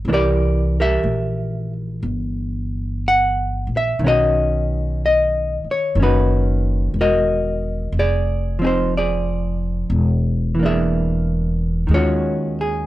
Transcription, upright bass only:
0, 0, Header, 1, 3, 480
1, 0, Start_track
1, 0, Tempo, 985222
1, 36, Time_signature, 4, 2, 24, 8
1, 6267, End_track
2, 0, Start_track
2, 0, Title_t, "Upright bass"
2, 0, Program_c, 0, 32
2, 23, Note_on_c, 0, 36, 68
2, 490, Note_off_c, 0, 36, 0
2, 504, Note_on_c, 0, 34, 63
2, 970, Note_off_c, 0, 34, 0
2, 987, Note_on_c, 0, 31, 72
2, 1775, Note_off_c, 0, 31, 0
2, 1788, Note_on_c, 0, 34, 59
2, 1934, Note_off_c, 0, 34, 0
2, 1945, Note_on_c, 0, 35, 69
2, 2732, Note_off_c, 0, 35, 0
2, 2900, Note_on_c, 0, 30, 77
2, 3363, Note_off_c, 0, 30, 0
2, 3380, Note_on_c, 0, 28, 67
2, 3841, Note_off_c, 0, 28, 0
2, 3860, Note_on_c, 0, 29, 73
2, 4804, Note_off_c, 0, 29, 0
2, 4822, Note_on_c, 0, 28, 75
2, 5772, Note_off_c, 0, 28, 0
2, 5790, Note_on_c, 0, 39, 69
2, 6267, Note_off_c, 0, 39, 0
2, 6267, End_track
3, 0, Start_track
3, 0, Title_t, "Muted upright bass strokes"
3, 2748, Note_on_c, 9, 29, 33
3, 2797, Note_off_c, 9, 29, 0
3, 6267, End_track
0, 0, End_of_file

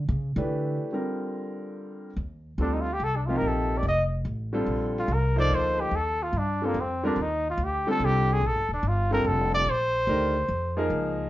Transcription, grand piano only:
0, 0, Header, 1, 2, 480
1, 0, Start_track
1, 0, Tempo, 415800
1, 1067, Time_signature, 3, 2, 24, 8
1, 13040, End_track
2, 0, Start_track
2, 0, Title_t, "Grand piano"
2, 0, Program_c, 0, 0
2, 424, Note_on_c, 0, 52, 69
2, 428, Note_on_c, 0, 57, 62
2, 432, Note_on_c, 0, 62, 55
2, 438, Note_on_c, 0, 67, 60
2, 441, Note_on_c, 0, 71, 64
2, 1032, Note_off_c, 0, 52, 0
2, 1034, Note_off_c, 0, 57, 0
2, 1036, Note_off_c, 0, 62, 0
2, 1039, Note_off_c, 0, 67, 0
2, 1040, Note_off_c, 0, 71, 0
2, 1068, Note_on_c, 0, 50, 56
2, 1070, Note_on_c, 0, 55, 55
2, 1074, Note_on_c, 0, 60, 53
2, 1079, Note_on_c, 0, 65, 51
2, 1084, Note_on_c, 0, 70, 67
2, 2414, Note_off_c, 0, 50, 0
2, 2416, Note_off_c, 0, 55, 0
2, 2417, Note_off_c, 0, 60, 0
2, 2420, Note_off_c, 0, 65, 0
2, 2423, Note_off_c, 0, 70, 0
2, 2993, Note_on_c, 0, 50, 63
2, 2995, Note_on_c, 0, 55, 60
2, 3003, Note_on_c, 0, 60, 57
2, 3005, Note_on_c, 0, 65, 57
2, 3013, Note_on_c, 0, 69, 75
2, 3282, Note_off_c, 0, 50, 0
2, 3283, Note_off_c, 0, 55, 0
2, 3287, Note_off_c, 0, 60, 0
2, 3289, Note_off_c, 0, 65, 0
2, 3292, Note_off_c, 0, 69, 0
2, 3789, Note_on_c, 0, 48, 70
2, 3798, Note_on_c, 0, 58, 67
2, 3800, Note_on_c, 0, 53, 70
2, 3804, Note_on_c, 0, 63, 62
2, 3809, Note_on_c, 0, 67, 79
2, 4397, Note_off_c, 0, 48, 0
2, 4402, Note_off_c, 0, 58, 0
2, 4403, Note_off_c, 0, 53, 0
2, 4405, Note_off_c, 0, 63, 0
2, 4407, Note_off_c, 0, 67, 0
2, 5226, Note_on_c, 0, 50, 76
2, 5229, Note_on_c, 0, 55, 73
2, 5236, Note_on_c, 0, 60, 68
2, 5238, Note_on_c, 0, 65, 73
2, 5246, Note_on_c, 0, 69, 91
2, 5837, Note_off_c, 0, 50, 0
2, 5838, Note_off_c, 0, 55, 0
2, 5842, Note_off_c, 0, 60, 0
2, 5843, Note_off_c, 0, 65, 0
2, 5847, Note_off_c, 0, 69, 0
2, 6189, Note_on_c, 0, 53, 78
2, 6196, Note_on_c, 0, 58, 69
2, 6201, Note_on_c, 0, 63, 75
2, 6206, Note_on_c, 0, 69, 69
2, 6215, Note_on_c, 0, 72, 92
2, 6798, Note_off_c, 0, 53, 0
2, 6802, Note_off_c, 0, 58, 0
2, 6805, Note_off_c, 0, 63, 0
2, 6807, Note_off_c, 0, 69, 0
2, 6812, Note_off_c, 0, 72, 0
2, 7641, Note_on_c, 0, 50, 74
2, 7645, Note_on_c, 0, 55, 62
2, 7649, Note_on_c, 0, 60, 61
2, 7660, Note_on_c, 0, 65, 67
2, 7665, Note_on_c, 0, 69, 77
2, 7780, Note_off_c, 0, 50, 0
2, 7782, Note_off_c, 0, 55, 0
2, 7784, Note_off_c, 0, 60, 0
2, 7789, Note_off_c, 0, 65, 0
2, 7792, Note_off_c, 0, 69, 0
2, 8121, Note_on_c, 0, 50, 88
2, 8126, Note_on_c, 0, 55, 78
2, 8126, Note_on_c, 0, 60, 74
2, 8134, Note_on_c, 0, 65, 74
2, 8140, Note_on_c, 0, 70, 90
2, 8260, Note_off_c, 0, 50, 0
2, 8263, Note_off_c, 0, 55, 0
2, 8263, Note_off_c, 0, 60, 0
2, 8266, Note_off_c, 0, 65, 0
2, 8269, Note_off_c, 0, 70, 0
2, 9083, Note_on_c, 0, 50, 82
2, 9085, Note_on_c, 0, 55, 72
2, 9088, Note_on_c, 0, 60, 79
2, 9095, Note_on_c, 0, 65, 68
2, 9097, Note_on_c, 0, 69, 92
2, 9685, Note_off_c, 0, 50, 0
2, 9686, Note_off_c, 0, 55, 0
2, 9687, Note_off_c, 0, 60, 0
2, 9691, Note_off_c, 0, 65, 0
2, 9692, Note_off_c, 0, 69, 0
2, 10516, Note_on_c, 0, 50, 75
2, 10520, Note_on_c, 0, 55, 70
2, 10528, Note_on_c, 0, 60, 69
2, 10529, Note_on_c, 0, 65, 64
2, 10530, Note_on_c, 0, 69, 86
2, 11120, Note_off_c, 0, 50, 0
2, 11122, Note_off_c, 0, 55, 0
2, 11126, Note_off_c, 0, 60, 0
2, 11127, Note_off_c, 0, 65, 0
2, 11127, Note_off_c, 0, 69, 0
2, 11630, Note_on_c, 0, 51, 66
2, 11631, Note_on_c, 0, 57, 64
2, 11639, Note_on_c, 0, 67, 64
2, 11641, Note_on_c, 0, 62, 66
2, 11648, Note_on_c, 0, 70, 85
2, 11921, Note_off_c, 0, 51, 0
2, 11922, Note_off_c, 0, 57, 0
2, 11926, Note_off_c, 0, 67, 0
2, 11927, Note_off_c, 0, 62, 0
2, 11930, Note_off_c, 0, 70, 0
2, 12430, Note_on_c, 0, 53, 78
2, 12431, Note_on_c, 0, 58, 75
2, 12437, Note_on_c, 0, 63, 82
2, 12442, Note_on_c, 0, 68, 81
2, 12450, Note_on_c, 0, 70, 92
2, 13035, Note_off_c, 0, 53, 0
2, 13036, Note_off_c, 0, 58, 0
2, 13039, Note_off_c, 0, 63, 0
2, 13040, Note_off_c, 0, 68, 0
2, 13040, Note_off_c, 0, 70, 0
2, 13040, End_track
0, 0, End_of_file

